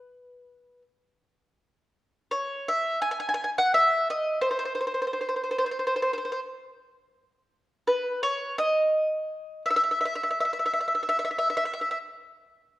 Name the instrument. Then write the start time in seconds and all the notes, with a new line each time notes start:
mandolin
Already playing: B4
2.31 C#5
2.68 E5
3.02 G#5
3.11 G#5
3.20 G#5
3.29 G#5
3.34 G#5
3.44 G#5
3.58 F#5
3.74 E5
4.10 D#5
4.41 C5
4.51 C5
4.59 C5
4.65 C5
4.75 C5
4.81 C5
4.87 C5
4.94 C5
5.02 C5
5.07 C5
5.13 C5
5.21 C5
5.29 C5
5.36 C5
5.44 C5
5.51 C5
5.58 C5
5.66 C5
5.71 C5
5.79 C5
5.87 C5
5.96 C5
6.02 C5
6.13 C5
6.18 C5
6.25 C5
6.32 C5
7.87 B4
8.23 C#5
8.58 D#5
9.66 E5
9.70 E5
9.76 E5
9.84 E5
9.91 E5
10.01 E5
10.05 E5
10.15 E5
10.23 E5
10.31 E5
10.40 E5
10.45 E5
10.53 E5
10.59 E5
10.66 E5
10.73 E5
10.80 E5
10.88 E5
10.95 E5
11.03 E5
11.09 E5
11.19 E5
11.25 E5
11.31 E5
11.38 E5
11.50 E5
11.57 E5
11.65 E5
11.73 E5
11.81 E5
11.91 E5